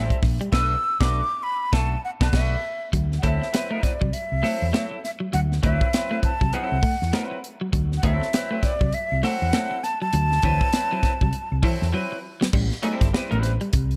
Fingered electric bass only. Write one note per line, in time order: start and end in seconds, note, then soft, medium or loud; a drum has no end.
0.23 0.38 A#1 medium
0.53 0.74 B1 loud
1.01 1.20 B1 loud
1.73 1.94 B1 loud
2.21 2.31 B1 loud
2.33 2.55 B1 medium
2.93 3.18 D2 loud
3.24 3.38 D2 loud
3.83 muted fingered electric bass stroke soft
4.02 4.11 C2 medium
4.32 4.41 C2 medium
4.62 4.72 E2 medium
5.34 5.58 D2 loud
5.64 5.78 D2 medium
6.23 muted fingered electric bass stroke soft
6.41 6.51 C2 medium
6.72 6.81 C2 medium
7.02 7.12 E2 medium
7.73 7.98 D2 loud
8.04 8.18 D2 loud
8.63 muted fingered electric bass stroke soft
8.81 8.91 C2 medium
9.12 9.21 C2 medium
9.42 9.52 E2 medium
10.13 10.38 D2 loud
10.43 10.58 D2 loud
11.03 muted fingered electric bass stroke soft
11.21 11.31 C2 medium
11.52 11.61 C2 medium
11.82 11.92 E2 medium
12.54 12.68 A1 loud
13.01 13.11 G1 medium
13.14 muted fingered electric bass stroke soft
13.32 13.56 A1 loud
13.74 13.96 C2 medium